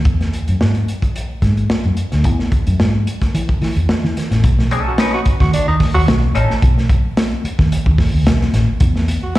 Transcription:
0.05 0.29 E2 medium
0.05 kick loud
0.05 closed hi-hat medium
0.21 snare soft
0.21 closed hi-hat soft
0.33 closed hi-hat medium
0.48 0.61 F#2 medium
0.48 closed hi-hat medium
0.61 0.84 G#2 medium
0.61 snare loud
0.75 closed hi-hat soft
0.88 closed hi-hat medium
1.02 kick medium
1.02 closed hi-hat soft
1.16 closed hi-hat medium
1.42 1.66 G#2 medium
1.42 kick medium
1.42 snare soft
1.42 closed hi-hat medium
1.57 closed hi-hat soft
1.70 muted fingered electric bass stroke soft
1.70 snare loud
1.84 1.96 F#2 medium
1.84 closed hi-hat soft
1.97 closed hi-hat medium
2.12 2.25 D2 medium
2.12 snare soft
2.12 closed hi-hat soft
2.24 2.48 E2 medium
2.24 kick loud
2.24 closed hi-hat medium
2.39 snare soft
2.52 kick loud
2.52 closed hi-hat medium
2.67 2.78 F#2 medium
2.67 closed hi-hat medium
2.80 3.03 G#2 medium
2.80 snare medium
3.07 closed hi-hat medium
3.22 kick medium
3.22 snare soft
3.22 closed hi-hat soft
3.34 3.47 E3 medium
3.34 closed hi-hat medium
3.49 kick medium
3.49 closed hi-hat soft
3.62 3.74 E3 loud
3.62 snare soft
3.62 open hi-hat medium
3.76 3.87 E2 medium
3.76 closed hi-hat soft
3.89 snare loud
4.04 4.15 E3 medium
4.04 snare soft
4.17 snare soft
4.17 closed hi-hat medium
4.31 4.42 A1 medium
4.31 snare soft
4.31 closed hi-hat soft
4.44 4.80 B1 loud
4.44 kick loud
4.44 closed hi-hat loud
4.59 snare soft
4.71 4.92 C#4 medium
4.71 4.92 D#4 medium
4.71 4.92 A4 loud
4.71 closed hi-hat medium
4.87 4.97 F#4 medium
4.98 5.16 C#4 medium
4.98 5.10 D#4 loud
4.98 5.16 D#4 medium
4.98 5.17 B4 medium
4.98 snare loud
4.98 closed hi-hat loud
5.13 5.21 F#4 medium
5.26 muted fingered electric bass stroke soft
5.26 kick medium
5.26 closed hi-hat medium
5.40 5.52 D#2 loud
5.40 5.51 F#4 loud
5.40 kick medium
5.40 snare soft
5.53 5.65 D4 loud
5.53 closed hi-hat loud
5.68 5.79 D#2 medium
5.68 5.76 D#4 medium
5.80 kick medium
5.80 snare soft
5.80 open hi-hat medium
5.94 6.06 D#2 medium
5.94 6.02 F#4 loud
6.08 6.31 B1 medium
6.08 snare loud
6.08 closed hi-hat loud
6.35 6.48 A1 medium
6.35 6.52 C#4 medium
6.35 6.53 D#4 loud
6.35 6.53 A4 loud
6.35 closed hi-hat medium
6.50 snare soft
6.62 6.99 B1 loud
6.62 kick loud
6.62 closed hi-hat medium
6.78 snare soft
6.90 kick loud
6.90 closed hi-hat medium
7.17 snare loud
7.17 closed hi-hat loud
7.44 muted fingered electric bass stroke soft
7.44 closed hi-hat medium
7.59 7.70 D#2 loud
7.59 kick medium
7.59 snare soft
7.72 closed hi-hat loud
7.86 7.98 D#2 medium
7.86 kick medium
7.98 kick medium
7.98 snare soft
7.98 open hi-hat medium
8.14 8.26 D#2 medium
8.26 8.50 B1 medium
8.26 snare loud
8.26 closed hi-hat loud
8.41 snare soft
8.53 8.66 A1 medium
8.53 snare soft
8.53 closed hi-hat medium
8.80 9.17 E2 loud
8.80 kick loud
8.80 closed hi-hat loud
8.96 snare soft
9.08 closed hi-hat medium
9.23 9.33 F#4 medium
9.35 snare loud
9.35 closed hi-hat loud

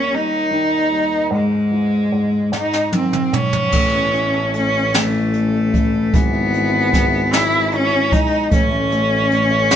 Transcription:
0.00 1.27 D#2 medium
0.00 0.11 G3 soft
0.00 1.27 A#3 soft
0.00 0.16 C#4 medium
0.11 0.89 G3 soft
0.11 1.33 D#4 medium
0.51 1.29 D#3 soft
0.91 1.30 G3 soft
1.31 2.11 G#2 medium
1.31 2.49 G#3 medium
1.71 2.50 E3 soft
2.12 2.51 G#2 soft
2.52 3.31 G#2 medium
2.52 2.92 D#4 medium
2.52 snare soft
2.73 snare soft
2.92 3.71 D#3 soft
2.92 3.37 C4 medium
2.92 high tom medium
3.13 mid tom medium
3.33 3.72 G#2 soft
3.33 4.55 C#4 medium
3.33 mid tom medium
3.53 floor tom medium
3.72 6.09 A1 medium
3.72 4.94 E3 medium
3.72 4.53 A3 medium
3.72 kick medium
3.72 crash medium
3.94 4.74 B3 medium
4.13 4.53 C#4 soft
4.13 5.69 E4 soft
4.13 closed hi-hat soft
4.33 5.53 A4 medium
4.54 6.10 A3 soft
4.54 5.34 C#4 soft
4.54 4.97 C#4 medium
4.54 closed hi-hat soft
4.74 5.14 B3 medium
4.94 6.13 E3 medium
4.94 6.17 A3 medium
4.94 snare loud
4.94 closed hi-hat medium
5.15 5.94 B3 medium
5.33 5.72 C#4 soft
5.33 closed hi-hat soft
5.54 6.21 A4 medium
5.73 6.21 C#4 soft
5.73 6.12 E4 soft
5.73 kick medium
5.73 closed hi-hat soft
5.94 6.33 B3 soft
6.13 8.21 G#1 loud
6.13 7.31 E3 medium
6.13 6.52 G#3 medium
6.13 7.36 B3 medium
6.13 kick loud
6.13 closed hi-hat medium
6.33 7.12 B3 medium
6.53 6.91 G#3 soft
6.53 6.92 E4 soft
6.53 closed hi-hat soft
6.73 7.91 G#4 medium
6.93 8.11 G#3 medium
6.93 7.72 E4 medium
6.93 kick medium
6.93 snare soft
6.93 closed hi-hat soft
7.13 7.53 B3 medium
7.32 8.60 E3 medium
7.32 7.75 E4 medium
7.32 snare loud
7.32 closed hi-hat medium
7.54 8.30 B3 medium
7.71 8.14 C#4 medium
7.71 8.12 E4 soft
7.71 closed hi-hat soft
7.93 8.60 G#4 medium
8.12 8.51 G#3 soft
8.12 8.52 D#4 medium
8.12 kick medium
8.12 closed hi-hat soft
8.32 8.51 B3 soft
8.51 9.76 A1 loud
8.51 8.70 A3 medium
8.51 8.90 A3 medium
8.51 9.76 C#4 medium
8.51 kick medium
8.51 closed hi-hat medium
8.71 9.49 A3 medium
8.90 9.30 A3 medium
8.90 9.30 C#4 medium
8.90 closed hi-hat soft
9.10 9.76 F#4 medium
9.31 9.76 A3 medium
9.31 9.76 C#4 medium
9.31 closed hi-hat soft
9.50 9.69 A3 medium
9.70 9.76 A3 medium
9.70 snare loud
9.70 closed hi-hat medium

